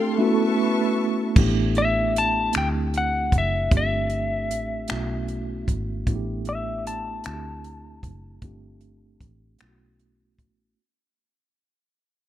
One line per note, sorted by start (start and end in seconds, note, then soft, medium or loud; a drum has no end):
0.00 0.17 A3 medium
0.00 0.18 C4 medium
0.00 0.18 D4 medium
0.00 0.19 F4 medium
0.00 0.19 G4 medium
0.00 0.17 A4 medium
0.00 0.55 A4 loud
0.00 0.17 F5 medium
0.00 0.14 G5 medium
0.00 0.17 C6 medium
0.18 1.34 A3 medium
0.18 1.35 B3 medium
0.18 1.36 C#4 medium
0.18 0.25 D#4 medium
0.18 1.37 F#4 medium
0.18 1.35 B4 medium
0.18 1.35 E5 medium
0.18 1.35 A5 medium
0.18 1.35 C#6 medium
0.26 1.36 E4 medium
1.35 2.50 A1 medium
1.35 2.52 A3 medium
1.35 2.54 B3 medium
1.35 2.53 D4 medium
1.35 2.54 E4 medium
1.35 2.55 G4 medium
1.35 kick loud
1.35 crash medium
1.75 2.17 E5 medium
1.75 closed hi-hat soft
2.16 2.53 A5 medium
2.16 closed hi-hat medium
2.53 3.29 D2 medium
2.53 3.70 A3 medium
2.53 3.71 C4 soft
2.53 3.71 D4 soft
2.53 3.72 E4 soft
2.53 3.72 G4 medium
2.53 finger snap loud
2.53 closed hi-hat medium
2.58 2.68 G5 medium
2.94 3.35 F#5 medium
2.94 closed hi-hat soft
3.32 3.68 F#1 medium
3.32 kick medium
3.32 closed hi-hat medium
3.38 3.72 E5 medium
3.71 4.52 G1 medium
3.71 4.87 A3 medium
3.71 3.78 B3 soft
3.71 4.89 D4 medium
3.71 4.89 F4 medium
3.71 4.90 G4 medium
3.71 kick loud
3.71 closed hi-hat medium
3.77 4.92 C4 medium
3.77 5.66 E5 medium
4.10 closed hi-hat soft
4.51 4.86 A1 medium
4.51 closed hi-hat medium
4.88 5.64 B1 medium
4.88 6.05 A3 medium
4.88 6.06 B3 medium
4.88 6.07 C#4 medium
4.88 6.07 E4 medium
4.88 6.07 F#4 medium
4.88 finger snap loud
4.88 closed hi-hat medium
5.28 closed hi-hat soft
5.68 6.03 G#1 medium
5.68 kick medium
5.68 closed hi-hat medium
6.06 7.21 A1 medium
6.06 7.23 A3 medium
6.06 7.24 B3 medium
6.06 7.24 D4 medium
6.06 7.25 E4 medium
6.06 6.14 F#4 medium
6.06 kick medium
6.06 closed hi-hat medium
6.15 7.29 G4 medium
6.45 6.84 E5 medium
6.45 closed hi-hat soft
6.87 7.25 A5 medium
6.87 closed hi-hat medium
7.24 8.00 D2 medium
7.24 8.41 A3 soft
7.24 8.42 C4 soft
7.24 8.42 D4 soft
7.24 8.43 E4 soft
7.24 7.32 F#4 soft
7.24 10.35 A5 medium
7.24 finger snap loud
7.24 closed hi-hat medium
7.33 8.44 G4 medium
7.64 closed hi-hat soft
8.03 8.39 F#1 medium
8.03 kick medium
8.03 closed hi-hat medium
8.42 9.17 G1 medium
8.42 9.59 A3 medium
8.42 9.60 C4 medium
8.42 9.60 D4 medium
8.42 9.60 F4 medium
8.42 9.61 G4 medium
8.42 kick medium
8.42 closed hi-hat medium
8.81 closed hi-hat soft
9.21 9.56 A1 medium
9.21 kick medium
9.21 closed hi-hat medium
9.59 10.39 B1 medium
9.59 10.77 A3 medium
9.59 10.77 B3 medium
9.59 10.78 C#4 medium
9.59 10.78 E4 medium
9.59 9.67 F4 medium
9.59 finger snap loud
9.59 closed hi-hat medium
9.69 10.82 F#4 medium
9.99 closed hi-hat soft
10.39 10.74 A1 medium
10.39 kick medium
10.39 closed hi-hat medium